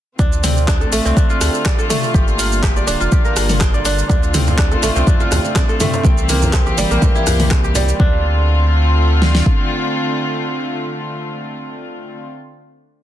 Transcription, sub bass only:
0, 0, Header, 1, 2, 480
1, 0, Start_track
1, 0, Key_signature, -1, "minor"
1, 0, Tempo, 487805
1, 192, Time_signature, 4, 2, 24, 8
1, 12822, End_track
2, 0, Start_track
2, 0, Title_t, "Sub bass"
2, 0, Program_c, 0, 38
2, 188, Note_on_c, 0, 38, 96
2, 842, Note_off_c, 0, 38, 0
2, 908, Note_on_c, 0, 33, 91
2, 989, Note_off_c, 0, 33, 0
2, 1038, Note_on_c, 0, 36, 100
2, 1109, Note_off_c, 0, 36, 0
2, 1389, Note_on_c, 0, 38, 102
2, 1470, Note_off_c, 0, 38, 0
2, 2109, Note_on_c, 0, 31, 97
2, 2763, Note_off_c, 0, 31, 0
2, 2834, Note_on_c, 0, 26, 89
2, 2913, Note_off_c, 0, 26, 0
2, 2961, Note_on_c, 0, 29, 101
2, 3030, Note_off_c, 0, 29, 0
2, 3313, Note_on_c, 0, 31, 95
2, 3965, Note_off_c, 0, 31, 0
2, 4031, Note_on_c, 0, 38, 97
2, 4684, Note_off_c, 0, 38, 0
2, 4752, Note_on_c, 0, 33, 91
2, 4832, Note_off_c, 0, 33, 0
2, 4879, Note_on_c, 0, 36, 103
2, 4949, Note_off_c, 0, 36, 0
2, 5230, Note_on_c, 0, 38, 102
2, 5311, Note_off_c, 0, 38, 0
2, 5950, Note_on_c, 0, 36, 99
2, 6603, Note_off_c, 0, 36, 0
2, 6669, Note_on_c, 0, 31, 91
2, 6750, Note_off_c, 0, 31, 0
2, 6798, Note_on_c, 0, 34, 100
2, 6869, Note_off_c, 0, 34, 0
2, 7149, Note_on_c, 0, 36, 98
2, 7803, Note_off_c, 0, 36, 0
2, 7870, Note_on_c, 0, 38, 96
2, 9271, Note_off_c, 0, 38, 0
2, 12822, End_track
0, 0, End_of_file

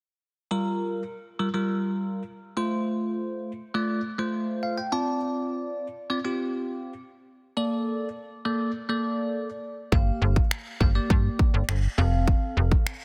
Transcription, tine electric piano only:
0, 0, Header, 1, 2, 480
1, 0, Start_track
1, 0, Key_signature, -2, "minor"
1, 0, Tempo, 588235
1, 417, Time_signature, 4, 2, 24, 8
1, 10647, End_track
2, 0, Start_track
2, 0, Title_t, "Tine electric piano"
2, 0, Program_c, 0, 4
2, 415, Note_on_c, 0, 55, 83
2, 417, Note_on_c, 0, 65, 76
2, 419, Note_on_c, 0, 70, 94
2, 831, Note_off_c, 0, 55, 0
2, 832, Note_off_c, 0, 65, 0
2, 833, Note_off_c, 0, 70, 0
2, 1135, Note_on_c, 0, 55, 80
2, 1137, Note_on_c, 0, 65, 73
2, 1139, Note_on_c, 0, 70, 91
2, 1205, Note_off_c, 0, 55, 0
2, 1206, Note_off_c, 0, 65, 0
2, 1207, Note_off_c, 0, 70, 0
2, 1255, Note_on_c, 0, 55, 81
2, 1257, Note_on_c, 0, 65, 78
2, 1259, Note_on_c, 0, 70, 90
2, 1809, Note_off_c, 0, 55, 0
2, 1810, Note_off_c, 0, 65, 0
2, 1811, Note_off_c, 0, 70, 0
2, 2095, Note_on_c, 0, 57, 82
2, 2097, Note_on_c, 0, 65, 78
2, 2099, Note_on_c, 0, 72, 92
2, 2864, Note_off_c, 0, 57, 0
2, 2865, Note_off_c, 0, 65, 0
2, 2866, Note_off_c, 0, 72, 0
2, 3055, Note_on_c, 0, 57, 86
2, 3057, Note_on_c, 0, 65, 77
2, 3059, Note_on_c, 0, 74, 93
2, 3263, Note_off_c, 0, 57, 0
2, 3264, Note_off_c, 0, 65, 0
2, 3265, Note_off_c, 0, 74, 0
2, 3415, Note_on_c, 0, 57, 80
2, 3417, Note_on_c, 0, 65, 78
2, 3419, Note_on_c, 0, 72, 90
2, 3777, Note_on_c, 0, 77, 71
2, 3889, Note_off_c, 0, 77, 0
2, 3897, Note_on_c, 0, 79, 67
2, 3900, Note_off_c, 0, 57, 0
2, 3901, Note_off_c, 0, 65, 0
2, 3902, Note_off_c, 0, 72, 0
2, 4009, Note_off_c, 0, 79, 0
2, 4015, Note_on_c, 0, 60, 84
2, 4017, Note_on_c, 0, 65, 77
2, 4017, Note_on_c, 0, 81, 69
2, 4019, Note_on_c, 0, 74, 94
2, 4240, Note_off_c, 0, 81, 0
2, 4784, Note_off_c, 0, 60, 0
2, 4785, Note_off_c, 0, 65, 0
2, 4786, Note_off_c, 0, 74, 0
2, 4975, Note_on_c, 0, 60, 83
2, 4977, Note_on_c, 0, 65, 76
2, 4979, Note_on_c, 0, 74, 92
2, 5045, Note_off_c, 0, 60, 0
2, 5046, Note_off_c, 0, 65, 0
2, 5047, Note_off_c, 0, 74, 0
2, 5095, Note_on_c, 0, 60, 82
2, 5097, Note_on_c, 0, 65, 75
2, 5099, Note_on_c, 0, 67, 92
2, 5649, Note_off_c, 0, 60, 0
2, 5650, Note_off_c, 0, 65, 0
2, 5651, Note_off_c, 0, 67, 0
2, 6175, Note_on_c, 0, 58, 80
2, 6177, Note_on_c, 0, 69, 77
2, 6179, Note_on_c, 0, 74, 88
2, 6591, Note_off_c, 0, 58, 0
2, 6592, Note_off_c, 0, 69, 0
2, 6593, Note_off_c, 0, 74, 0
2, 6895, Note_on_c, 0, 58, 86
2, 6897, Note_on_c, 0, 69, 80
2, 6899, Note_on_c, 0, 74, 92
2, 7104, Note_off_c, 0, 58, 0
2, 7105, Note_off_c, 0, 69, 0
2, 7106, Note_off_c, 0, 74, 0
2, 7255, Note_on_c, 0, 58, 83
2, 7257, Note_on_c, 0, 69, 77
2, 7259, Note_on_c, 0, 74, 91
2, 7740, Note_off_c, 0, 58, 0
2, 7741, Note_off_c, 0, 69, 0
2, 7742, Note_off_c, 0, 74, 0
2, 8095, Note_on_c, 0, 58, 81
2, 8097, Note_on_c, 0, 67, 76
2, 8099, Note_on_c, 0, 77, 88
2, 8511, Note_off_c, 0, 58, 0
2, 8512, Note_off_c, 0, 67, 0
2, 8513, Note_off_c, 0, 77, 0
2, 8815, Note_on_c, 0, 58, 80
2, 8817, Note_on_c, 0, 67, 76
2, 8819, Note_on_c, 0, 77, 89
2, 8885, Note_off_c, 0, 58, 0
2, 8886, Note_off_c, 0, 67, 0
2, 8887, Note_off_c, 0, 77, 0
2, 8935, Note_on_c, 0, 58, 82
2, 8937, Note_on_c, 0, 67, 79
2, 8939, Note_on_c, 0, 74, 92
2, 9490, Note_off_c, 0, 58, 0
2, 9491, Note_off_c, 0, 67, 0
2, 9492, Note_off_c, 0, 74, 0
2, 9775, Note_on_c, 0, 60, 88
2, 9777, Note_on_c, 0, 69, 79
2, 9779, Note_on_c, 0, 77, 96
2, 10544, Note_off_c, 0, 60, 0
2, 10545, Note_off_c, 0, 69, 0
2, 10546, Note_off_c, 0, 77, 0
2, 10647, End_track
0, 0, End_of_file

